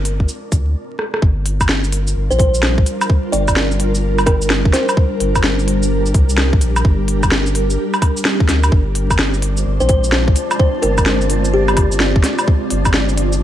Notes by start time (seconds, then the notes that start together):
Already playing: G1 G#3 C4 D4 F4 A#4 D5
0.05 open hi-hat
0.20 kick
0.29 shaker
0.52 D2, kick, open hi-hat, shaker
0.99 cross-stick
1.14 cross-stick
1.22 G1 G3 D4 F4 A#4, kick
1.46 open hi-hat
1.61 kick, low woodblock, shaker
1.69 snare
1.84 shaker
1.92 open hi-hat
2.07 shaker
2.16 G1
2.30 A#1 C5, shaker
2.39 C5, kick, open hi-hat
2.54 shaker
2.63 snare
2.78 kick
2.86 open hi-hat, shaker
3.01 low woodblock, shaker
3.10 kick
3.32 G1 D5, open hi-hat
3.48 kick, low woodblock, shaker
3.57 snare
3.71 shaker
3.80 open hi-hat
3.95 shaker
4.18 low woodblock, shaker
4.26 A#4, kick, open hi-hat, low woodblock
4.42 shaker
4.50 snare
4.65 kick
4.73 C5, snare, open hi-hat, shaker
4.89 low woodblock, shaker
4.97 G4, kick
5.20 G1, open hi-hat
5.36 kick, low woodblock, shaker
5.44 snare
5.59 shaker
5.68 open hi-hat
5.83 shaker
6.06 shaker
6.14 C2, kick, open hi-hat
6.29 shaker
6.38 snare
6.53 kick
6.61 A#1, open hi-hat, shaker
6.76 low woodblock, shaker
6.85 G1, kick
7.08 open hi-hat
7.23 kick, low woodblock, shaker
7.32 snare
7.46 shaker
7.55 open hi-hat
7.70 shaker
7.94 low woodblock, shaker
8.02 kick, open hi-hat, low woodblock
8.17 shaker
8.25 snare
8.40 kick
8.49 D2, snare, open hi-hat, shaker
8.64 low woodblock, shaker
8.72 G1 G#3 C4 D4 F4 C5 D5, kick
8.95 open hi-hat
9.11 kick, low woodblock, shaker
9.19 snare
9.34 shaker
9.42 open hi-hat
9.57 shaker
9.66 G1
9.80 A#1 C5, shaker
9.89 C5, kick, open hi-hat
10.04 shaker
10.12 snare
10.28 kick
10.36 open hi-hat, shaker
10.51 low woodblock, shaker
10.59 C5, kick
10.82 G1 A#4, open hi-hat
10.98 kick, low woodblock, shaker
11.06 snare
11.21 shaker
11.30 open hi-hat
11.45 shaker
11.54 G4
11.68 low woodblock, shaker
11.77 kick, open hi-hat, low woodblock
11.92 shaker
12.00 snare
12.16 kick
12.24 snare, open hi-hat, shaker
12.39 low woodblock, shaker
12.48 D5, kick
12.70 G1, open hi-hat
12.85 kick, low woodblock, shaker
12.94 snare
13.09 shaker
13.17 open hi-hat
13.33 shaker